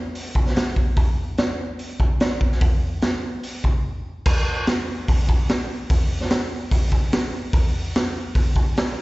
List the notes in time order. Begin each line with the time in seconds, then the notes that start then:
0.15 open hi-hat
0.35 kick
0.46 snare
0.56 snare, open hi-hat
0.76 kick
0.97 kick, open hi-hat
1.38 snare, open hi-hat
1.79 open hi-hat
2.00 kick
2.20 snare, open hi-hat
2.41 kick
2.52 snare
2.61 kick, open hi-hat
3.02 snare, open hi-hat
3.43 open hi-hat
3.64 kick
4.26 kick, crash
4.67 snare, open hi-hat
5.08 kick, open hi-hat
5.29 kick
5.49 snare, open hi-hat
5.90 kick, open hi-hat
6.21 snare
6.30 snare, open hi-hat
6.71 kick, open hi-hat
6.92 kick
7.12 snare, open hi-hat
7.53 kick, open hi-hat
7.95 snare, open hi-hat
8.35 kick, open hi-hat
8.56 kick
8.77 snare, open hi-hat